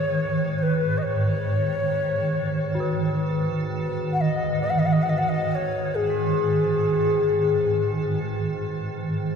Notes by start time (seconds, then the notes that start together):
Already playing: G#2 D#3 G#4 B4 C#5
0.58 C#5
0.62 B4
0.98 D#5
1.02 C#5
2.75 F#4
2.80 B4
4.13 F#5
4.21 D#5
4.62 D#5
4.70 F#5
4.79 D#5
4.85 F#5
4.92 D#5
5.02 F#5
5.09 D#5
5.18 F#5
5.29 D#5
5.51 C#5 D#5
5.95 G#4
6.10 G#4